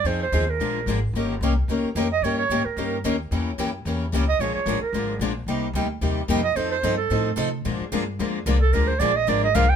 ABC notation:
X:1
M:4/4
L:1/8
Q:"Swing" 1/4=221
K:Bbmix
V:1 name="Clarinet"
c c2 B3 z2 | z6 z e | _d d2 B3 z2 | z6 z e |
_d d2 B3 z2 | z6 z e | c c2 =A3 z2 | z6 z =A |
B c d e d e f g |]
V:2 name="Steel-string acoustic guitar"
[F,CEA] z [F,CEA] z [F,A,DFB] z [F,A,DFB] z | [E,B,_DGB] z [E,B,DGB] z [E,B,DGB] z [E,B,DGB] z | [E,B,_DGB] z [E,B,DGB] z [E,B,DGB] z [E,B,DGB] z | [=E,B,^CG] z [E,B,CG] z [E,B,CG] z [E,B,CG] z |
[F,A,DFB] z [F,A,DFB] z [F,A,DFB] z [F,A,DFB] z | [C,G,B,EG] z [C,G,B,EG] z [C,G,B,EG] z [C,G,B,EG] z | [F,CE=A] z [F,CEA] z [F,CEA] z [F,CEA] z | [F,A,DFB] z [F,A,DFB] z [F,A,DFB] z [F,A,DFB] z |
[F,A,DFB] z [F,A,DFB] z [F,A,DFB] z [F,A,DFB] z |]
V:3 name="Steel-string acoustic guitar"
[F,CEA] z [F,CEA] z [D,F,B,DA] z [D,F,B,DA] z | [E,B,_DGB] z [E,B,DGB] z [E,B,DGB] z [E,B,DGB] z | [E,B,_DGB] z [E,B,DGB] z [E,B,DGB] z [E,B,DGB] z | [=E,G,^C=EB] z [E,G,CEB] z [E,G,CEB] z [E,G,CEB] z |
[D,F,B,DA] z [D,F,B,DA] z [D,F,B,DA] z [D,F,B,DA] z | [C,G,B,EG] z [C,G,B,EG] z [C,G,B,EG] z [C,G,B,EG] z | [F,CE=A] z [F,CEA] z [F,CEA] z [F,CEA] z | [D,F,B,DA] z [D,F,B,DA] z [D,F,B,DA] z [D,F,B,DA] z |
[D,F,B,DA] z [D,F,B,DA] z [D,F,B,DA] z [D,F,B,DA] z |]
V:4 name="Upright bass" clef=bass
F,,2 E,,2 B,,,2 A,,,2 | G,,,2 C,,2 _D,, z F,,2 | G,,2 A,, z G,,2 E,,2 | =E,,2 _G,,2 E,,2 ^C,,2 |
B,,, z =A,,, z _A,,,2 B,,,2 | C,,2 D,,2 E,,2 F,,2 | F,,2 G,,2 =A,,2 C,2 | B,, z G,,2 F,,2 C,,2 |
D,,2 B,,,2 A,,,2 C,,2 |]